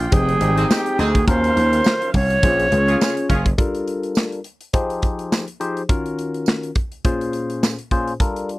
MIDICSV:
0, 0, Header, 1, 7, 480
1, 0, Start_track
1, 0, Tempo, 576923
1, 1062, Time_signature, 4, 2, 24, 8
1, 7146, End_track
2, 0, Start_track
2, 0, Title_t, "Flute"
2, 0, Program_c, 0, 73
2, 0, Note_on_c, 0, 65, 99
2, 108, Note_on_c, 0, 68, 98
2, 120, Note_off_c, 0, 65, 0
2, 589, Note_on_c, 0, 67, 87
2, 601, Note_off_c, 0, 68, 0
2, 830, Note_on_c, 0, 68, 99
2, 842, Note_off_c, 0, 67, 0
2, 1066, Note_off_c, 0, 68, 0
2, 1069, Note_on_c, 0, 72, 110
2, 1752, Note_off_c, 0, 72, 0
2, 1789, Note_on_c, 0, 73, 114
2, 2712, Note_off_c, 0, 73, 0
2, 7146, End_track
3, 0, Start_track
3, 0, Title_t, "Tine electric piano"
3, 0, Program_c, 1, 4
3, 98, Note_on_c, 1, 60, 77
3, 100, Note_on_c, 1, 63, 72
3, 103, Note_on_c, 1, 67, 66
3, 103, Note_on_c, 1, 68, 82
3, 297, Note_off_c, 1, 60, 0
3, 299, Note_off_c, 1, 63, 0
3, 300, Note_off_c, 1, 67, 0
3, 300, Note_off_c, 1, 68, 0
3, 337, Note_on_c, 1, 60, 82
3, 339, Note_on_c, 1, 63, 79
3, 341, Note_on_c, 1, 67, 80
3, 343, Note_on_c, 1, 68, 86
3, 841, Note_off_c, 1, 60, 0
3, 842, Note_off_c, 1, 63, 0
3, 842, Note_off_c, 1, 67, 0
3, 844, Note_off_c, 1, 68, 0
3, 1060, Note_on_c, 1, 61, 72
3, 1062, Note_on_c, 1, 65, 63
3, 1064, Note_on_c, 1, 66, 55
3, 1066, Note_on_c, 1, 70, 83
3, 1733, Note_off_c, 1, 61, 0
3, 1734, Note_off_c, 1, 65, 0
3, 1735, Note_off_c, 1, 66, 0
3, 1735, Note_off_c, 1, 70, 0
3, 2021, Note_on_c, 1, 61, 75
3, 2023, Note_on_c, 1, 65, 65
3, 2024, Note_on_c, 1, 68, 73
3, 2025, Note_on_c, 1, 72, 87
3, 2219, Note_off_c, 1, 61, 0
3, 2220, Note_off_c, 1, 65, 0
3, 2220, Note_off_c, 1, 68, 0
3, 2221, Note_off_c, 1, 72, 0
3, 2256, Note_on_c, 1, 61, 76
3, 2259, Note_on_c, 1, 65, 70
3, 2262, Note_on_c, 1, 68, 67
3, 2265, Note_on_c, 1, 71, 60
3, 2317, Note_on_c, 1, 73, 89
3, 2324, Note_off_c, 1, 71, 0
3, 2760, Note_off_c, 1, 61, 0
3, 2762, Note_off_c, 1, 65, 0
3, 2763, Note_off_c, 1, 68, 0
3, 2791, Note_off_c, 1, 73, 0
3, 2976, Note_on_c, 1, 55, 76
3, 2979, Note_on_c, 1, 62, 66
3, 2980, Note_on_c, 1, 65, 73
3, 2983, Note_on_c, 1, 69, 62
3, 2983, Note_on_c, 1, 70, 77
3, 3651, Note_off_c, 1, 55, 0
3, 3652, Note_off_c, 1, 62, 0
3, 3653, Note_off_c, 1, 65, 0
3, 3654, Note_off_c, 1, 69, 0
3, 3654, Note_off_c, 1, 70, 0
3, 3938, Note_on_c, 1, 53, 87
3, 3940, Note_on_c, 1, 63, 77
3, 3943, Note_on_c, 1, 67, 78
3, 3943, Note_on_c, 1, 68, 80
3, 3945, Note_on_c, 1, 72, 86
3, 4527, Note_off_c, 1, 53, 0
3, 4528, Note_off_c, 1, 63, 0
3, 4530, Note_off_c, 1, 67, 0
3, 4530, Note_off_c, 1, 68, 0
3, 4531, Note_off_c, 1, 72, 0
3, 4660, Note_on_c, 1, 53, 78
3, 4661, Note_on_c, 1, 63, 75
3, 4664, Note_on_c, 1, 67, 80
3, 4664, Note_on_c, 1, 68, 73
3, 4667, Note_on_c, 1, 72, 92
3, 4836, Note_off_c, 1, 53, 0
3, 4836, Note_off_c, 1, 63, 0
3, 4838, Note_off_c, 1, 67, 0
3, 4838, Note_off_c, 1, 68, 0
3, 4839, Note_off_c, 1, 72, 0
3, 4899, Note_on_c, 1, 51, 65
3, 4900, Note_on_c, 1, 61, 71
3, 4901, Note_on_c, 1, 65, 72
3, 4902, Note_on_c, 1, 66, 61
3, 4904, Note_on_c, 1, 70, 84
3, 5572, Note_off_c, 1, 51, 0
3, 5573, Note_off_c, 1, 61, 0
3, 5573, Note_off_c, 1, 65, 0
3, 5574, Note_off_c, 1, 66, 0
3, 5575, Note_off_c, 1, 70, 0
3, 5861, Note_on_c, 1, 46, 84
3, 5863, Note_on_c, 1, 61, 76
3, 5865, Note_on_c, 1, 65, 84
3, 5865, Note_on_c, 1, 68, 76
3, 5868, Note_on_c, 1, 72, 91
3, 6449, Note_off_c, 1, 46, 0
3, 6450, Note_off_c, 1, 61, 0
3, 6451, Note_off_c, 1, 65, 0
3, 6451, Note_off_c, 1, 68, 0
3, 6452, Note_off_c, 1, 72, 0
3, 6582, Note_on_c, 1, 46, 88
3, 6584, Note_on_c, 1, 61, 75
3, 6585, Note_on_c, 1, 65, 83
3, 6587, Note_on_c, 1, 68, 77
3, 6587, Note_on_c, 1, 72, 104
3, 6757, Note_off_c, 1, 46, 0
3, 6758, Note_off_c, 1, 61, 0
3, 6759, Note_off_c, 1, 65, 0
3, 6759, Note_off_c, 1, 68, 0
3, 6760, Note_off_c, 1, 72, 0
3, 6821, Note_on_c, 1, 55, 79
3, 6823, Note_on_c, 1, 62, 66
3, 6825, Note_on_c, 1, 65, 64
3, 6827, Note_on_c, 1, 69, 67
3, 6828, Note_on_c, 1, 70, 82
3, 7064, Note_off_c, 1, 69, 0
3, 7065, Note_off_c, 1, 70, 0
3, 7146, Note_off_c, 1, 55, 0
3, 7146, Note_off_c, 1, 62, 0
3, 7146, Note_off_c, 1, 65, 0
3, 7146, End_track
4, 0, Start_track
4, 0, Title_t, "Horn section"
4, 0, Program_c, 2, 61
4, 476, Note_on_c, 2, 60, 88
4, 477, Note_on_c, 2, 63, 97
4, 478, Note_on_c, 2, 68, 95
4, 544, Note_off_c, 2, 60, 0
4, 544, Note_off_c, 2, 63, 0
4, 544, Note_off_c, 2, 68, 0
4, 582, Note_on_c, 2, 60, 77
4, 582, Note_on_c, 2, 63, 88
4, 582, Note_on_c, 2, 67, 98
4, 696, Note_off_c, 2, 60, 0
4, 696, Note_off_c, 2, 63, 0
4, 696, Note_off_c, 2, 67, 0
4, 822, Note_on_c, 2, 60, 98
4, 822, Note_on_c, 2, 68, 110
4, 823, Note_on_c, 2, 63, 102
4, 975, Note_off_c, 2, 60, 0
4, 975, Note_off_c, 2, 68, 0
4, 976, Note_off_c, 2, 63, 0
4, 2395, Note_on_c, 2, 65, 88
4, 2396, Note_on_c, 2, 61, 83
4, 2396, Note_on_c, 2, 68, 89
4, 2463, Note_off_c, 2, 61, 0
4, 2463, Note_off_c, 2, 65, 0
4, 2463, Note_off_c, 2, 68, 0
4, 2500, Note_on_c, 2, 61, 81
4, 2500, Note_on_c, 2, 65, 88
4, 2500, Note_on_c, 2, 68, 94
4, 2615, Note_off_c, 2, 61, 0
4, 2615, Note_off_c, 2, 65, 0
4, 2615, Note_off_c, 2, 68, 0
4, 2742, Note_on_c, 2, 61, 93
4, 2742, Note_on_c, 2, 65, 95
4, 2743, Note_on_c, 2, 68, 97
4, 2895, Note_off_c, 2, 61, 0
4, 2895, Note_off_c, 2, 65, 0
4, 2896, Note_off_c, 2, 68, 0
4, 7146, End_track
5, 0, Start_track
5, 0, Title_t, "String section"
5, 0, Program_c, 3, 48
5, 0, Note_on_c, 3, 53, 89
5, 0, Note_on_c, 3, 69, 75
5, 0, Note_on_c, 3, 79, 96
5, 94, Note_off_c, 3, 69, 0
5, 98, Note_on_c, 3, 56, 62
5, 99, Note_on_c, 3, 63, 71
5, 1044, Note_off_c, 3, 53, 0
5, 1044, Note_off_c, 3, 79, 0
5, 1050, Note_off_c, 3, 56, 0
5, 1051, Note_off_c, 3, 63, 0
5, 1059, Note_on_c, 3, 54, 65
5, 1061, Note_on_c, 3, 61, 76
5, 1062, Note_on_c, 3, 51, 74
5, 1062, Note_on_c, 3, 77, 85
5, 2011, Note_off_c, 3, 54, 0
5, 2012, Note_off_c, 3, 51, 0
5, 2012, Note_off_c, 3, 61, 0
5, 2012, Note_off_c, 3, 77, 0
5, 2022, Note_on_c, 3, 49, 67
5, 2022, Note_on_c, 3, 61, 79
5, 2023, Note_on_c, 3, 56, 68
5, 2023, Note_on_c, 3, 58, 57
5, 2972, Note_off_c, 3, 49, 0
5, 2972, Note_off_c, 3, 61, 0
5, 2973, Note_off_c, 3, 56, 0
5, 2973, Note_off_c, 3, 58, 0
5, 7146, End_track
6, 0, Start_track
6, 0, Title_t, "Slap bass"
6, 0, Program_c, 4, 36
6, 102, Note_on_c, 4, 29, 105
6, 291, Note_off_c, 4, 29, 0
6, 341, Note_on_c, 4, 32, 100
6, 530, Note_off_c, 4, 32, 0
6, 822, Note_on_c, 4, 38, 95
6, 1010, Note_off_c, 4, 38, 0
6, 1062, Note_on_c, 4, 39, 108
6, 1250, Note_off_c, 4, 39, 0
6, 1303, Note_on_c, 4, 39, 109
6, 1491, Note_off_c, 4, 39, 0
6, 1781, Note_on_c, 4, 36, 74
6, 1970, Note_off_c, 4, 36, 0
6, 2024, Note_on_c, 4, 34, 106
6, 2211, Note_off_c, 4, 34, 0
6, 2263, Note_on_c, 4, 37, 104
6, 2451, Note_off_c, 4, 37, 0
6, 2742, Note_on_c, 4, 30, 87
6, 2930, Note_off_c, 4, 30, 0
6, 7146, End_track
7, 0, Start_track
7, 0, Title_t, "Drums"
7, 100, Note_on_c, 9, 42, 93
7, 102, Note_on_c, 9, 36, 120
7, 183, Note_off_c, 9, 42, 0
7, 186, Note_off_c, 9, 36, 0
7, 238, Note_on_c, 9, 42, 54
7, 322, Note_off_c, 9, 42, 0
7, 340, Note_on_c, 9, 42, 86
7, 423, Note_off_c, 9, 42, 0
7, 478, Note_on_c, 9, 42, 57
7, 562, Note_off_c, 9, 42, 0
7, 587, Note_on_c, 9, 54, 101
7, 588, Note_on_c, 9, 38, 98
7, 597, Note_on_c, 9, 39, 85
7, 670, Note_off_c, 9, 54, 0
7, 671, Note_off_c, 9, 38, 0
7, 681, Note_off_c, 9, 39, 0
7, 716, Note_on_c, 9, 42, 54
7, 799, Note_off_c, 9, 42, 0
7, 824, Note_on_c, 9, 42, 71
7, 908, Note_off_c, 9, 42, 0
7, 956, Note_on_c, 9, 36, 93
7, 958, Note_on_c, 9, 42, 51
7, 1040, Note_off_c, 9, 36, 0
7, 1041, Note_off_c, 9, 42, 0
7, 1062, Note_on_c, 9, 36, 121
7, 1062, Note_on_c, 9, 42, 86
7, 1145, Note_off_c, 9, 36, 0
7, 1145, Note_off_c, 9, 42, 0
7, 1199, Note_on_c, 9, 42, 53
7, 1282, Note_off_c, 9, 42, 0
7, 1306, Note_on_c, 9, 42, 75
7, 1390, Note_off_c, 9, 42, 0
7, 1438, Note_on_c, 9, 42, 53
7, 1521, Note_off_c, 9, 42, 0
7, 1534, Note_on_c, 9, 54, 78
7, 1550, Note_on_c, 9, 38, 112
7, 1560, Note_on_c, 9, 39, 81
7, 1617, Note_off_c, 9, 54, 0
7, 1634, Note_off_c, 9, 38, 0
7, 1643, Note_off_c, 9, 39, 0
7, 1678, Note_on_c, 9, 42, 52
7, 1762, Note_off_c, 9, 42, 0
7, 1779, Note_on_c, 9, 46, 79
7, 1781, Note_on_c, 9, 36, 95
7, 1863, Note_off_c, 9, 46, 0
7, 1865, Note_off_c, 9, 36, 0
7, 1915, Note_on_c, 9, 42, 56
7, 1998, Note_off_c, 9, 42, 0
7, 2021, Note_on_c, 9, 42, 95
7, 2023, Note_on_c, 9, 36, 123
7, 2105, Note_off_c, 9, 42, 0
7, 2106, Note_off_c, 9, 36, 0
7, 2160, Note_on_c, 9, 42, 56
7, 2243, Note_off_c, 9, 42, 0
7, 2262, Note_on_c, 9, 42, 82
7, 2345, Note_off_c, 9, 42, 0
7, 2399, Note_on_c, 9, 42, 55
7, 2482, Note_off_c, 9, 42, 0
7, 2507, Note_on_c, 9, 54, 99
7, 2510, Note_on_c, 9, 38, 96
7, 2520, Note_on_c, 9, 39, 79
7, 2590, Note_off_c, 9, 54, 0
7, 2593, Note_off_c, 9, 38, 0
7, 2603, Note_off_c, 9, 39, 0
7, 2637, Note_on_c, 9, 42, 61
7, 2720, Note_off_c, 9, 42, 0
7, 2743, Note_on_c, 9, 36, 96
7, 2745, Note_on_c, 9, 42, 67
7, 2826, Note_off_c, 9, 36, 0
7, 2828, Note_off_c, 9, 42, 0
7, 2877, Note_on_c, 9, 36, 91
7, 2877, Note_on_c, 9, 42, 53
7, 2960, Note_off_c, 9, 36, 0
7, 2960, Note_off_c, 9, 42, 0
7, 2982, Note_on_c, 9, 36, 116
7, 2982, Note_on_c, 9, 42, 84
7, 3065, Note_off_c, 9, 36, 0
7, 3065, Note_off_c, 9, 42, 0
7, 3117, Note_on_c, 9, 42, 48
7, 3200, Note_off_c, 9, 42, 0
7, 3225, Note_on_c, 9, 42, 62
7, 3308, Note_off_c, 9, 42, 0
7, 3357, Note_on_c, 9, 42, 43
7, 3440, Note_off_c, 9, 42, 0
7, 3454, Note_on_c, 9, 54, 80
7, 3469, Note_on_c, 9, 38, 93
7, 3478, Note_on_c, 9, 39, 80
7, 3537, Note_off_c, 9, 54, 0
7, 3552, Note_off_c, 9, 38, 0
7, 3562, Note_off_c, 9, 39, 0
7, 3597, Note_on_c, 9, 42, 49
7, 3681, Note_off_c, 9, 42, 0
7, 3697, Note_on_c, 9, 42, 72
7, 3780, Note_off_c, 9, 42, 0
7, 3832, Note_on_c, 9, 42, 50
7, 3915, Note_off_c, 9, 42, 0
7, 3939, Note_on_c, 9, 42, 83
7, 3942, Note_on_c, 9, 36, 122
7, 4022, Note_off_c, 9, 42, 0
7, 4025, Note_off_c, 9, 36, 0
7, 4078, Note_on_c, 9, 42, 55
7, 4161, Note_off_c, 9, 42, 0
7, 4179, Note_on_c, 9, 42, 73
7, 4183, Note_on_c, 9, 36, 84
7, 4262, Note_off_c, 9, 42, 0
7, 4267, Note_off_c, 9, 36, 0
7, 4317, Note_on_c, 9, 42, 50
7, 4401, Note_off_c, 9, 42, 0
7, 4428, Note_on_c, 9, 38, 83
7, 4429, Note_on_c, 9, 54, 89
7, 4438, Note_on_c, 9, 39, 77
7, 4511, Note_off_c, 9, 38, 0
7, 4512, Note_off_c, 9, 54, 0
7, 4521, Note_off_c, 9, 39, 0
7, 4557, Note_on_c, 9, 42, 54
7, 4640, Note_off_c, 9, 42, 0
7, 4666, Note_on_c, 9, 42, 68
7, 4749, Note_off_c, 9, 42, 0
7, 4800, Note_on_c, 9, 42, 44
7, 4883, Note_off_c, 9, 42, 0
7, 4903, Note_on_c, 9, 36, 117
7, 4904, Note_on_c, 9, 42, 88
7, 4986, Note_off_c, 9, 36, 0
7, 4987, Note_off_c, 9, 42, 0
7, 5039, Note_on_c, 9, 42, 51
7, 5123, Note_off_c, 9, 42, 0
7, 5147, Note_on_c, 9, 42, 63
7, 5231, Note_off_c, 9, 42, 0
7, 5278, Note_on_c, 9, 42, 42
7, 5362, Note_off_c, 9, 42, 0
7, 5375, Note_on_c, 9, 54, 73
7, 5391, Note_on_c, 9, 38, 100
7, 5400, Note_on_c, 9, 39, 78
7, 5459, Note_off_c, 9, 54, 0
7, 5474, Note_off_c, 9, 38, 0
7, 5483, Note_off_c, 9, 39, 0
7, 5519, Note_on_c, 9, 42, 52
7, 5603, Note_off_c, 9, 42, 0
7, 5619, Note_on_c, 9, 42, 63
7, 5622, Note_on_c, 9, 36, 95
7, 5702, Note_off_c, 9, 42, 0
7, 5705, Note_off_c, 9, 36, 0
7, 5754, Note_on_c, 9, 42, 47
7, 5838, Note_off_c, 9, 42, 0
7, 5862, Note_on_c, 9, 42, 79
7, 5863, Note_on_c, 9, 36, 120
7, 5945, Note_off_c, 9, 42, 0
7, 5946, Note_off_c, 9, 36, 0
7, 6001, Note_on_c, 9, 42, 53
7, 6084, Note_off_c, 9, 42, 0
7, 6101, Note_on_c, 9, 42, 71
7, 6184, Note_off_c, 9, 42, 0
7, 6238, Note_on_c, 9, 42, 52
7, 6322, Note_off_c, 9, 42, 0
7, 6349, Note_on_c, 9, 38, 92
7, 6350, Note_on_c, 9, 54, 89
7, 6359, Note_on_c, 9, 39, 79
7, 6432, Note_off_c, 9, 38, 0
7, 6434, Note_off_c, 9, 54, 0
7, 6442, Note_off_c, 9, 39, 0
7, 6477, Note_on_c, 9, 42, 54
7, 6560, Note_off_c, 9, 42, 0
7, 6583, Note_on_c, 9, 36, 85
7, 6585, Note_on_c, 9, 42, 66
7, 6666, Note_off_c, 9, 36, 0
7, 6668, Note_off_c, 9, 42, 0
7, 6719, Note_on_c, 9, 42, 43
7, 6802, Note_off_c, 9, 42, 0
7, 6823, Note_on_c, 9, 36, 110
7, 6824, Note_on_c, 9, 42, 86
7, 6906, Note_off_c, 9, 36, 0
7, 6907, Note_off_c, 9, 42, 0
7, 6959, Note_on_c, 9, 42, 52
7, 7042, Note_off_c, 9, 42, 0
7, 7066, Note_on_c, 9, 42, 63
7, 7146, Note_off_c, 9, 42, 0
7, 7146, End_track
0, 0, End_of_file